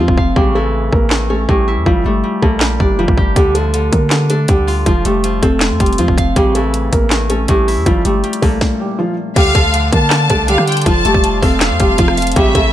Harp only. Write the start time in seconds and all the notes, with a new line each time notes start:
Already playing: A3 C4 D4 F4
0.00 F3
0.18 F5
0.36 C#3
0.55 E3
1.12 A2
1.30 C#4
1.49 A2
1.68 E4
1.87 G3
2.06 A3
2.24 G3
2.42 A#2
2.61 G3
2.80 D4
2.99 G3
3.17 G4
3.36 D3
3.55 F3
3.74 D3
4.11 D3
4.30 D4
4.48 D3
4.67 F4
4.86 F3
5.05 A3
5.24 F3
5.43 C4
5.61 F3
5.80 F4
5.99 F3
6.18 F5
6.36 C#3
6.55 E3
7.12 A2
7.30 C#4
7.49 A2
7.68 E4
7.87 G3
8.06 A3
8.24 G3
8.42 A#2
9.36 D3
9.55 F3
9.74 D3
10.11 D3
10.30 D4
10.48 D3
10.67 F4
10.87 F3
11.05 A3
11.24 F3
11.43 C4
11.61 F3
11.80 F4
11.99 F3
12.18 F5
12.36 C#3
12.55 E3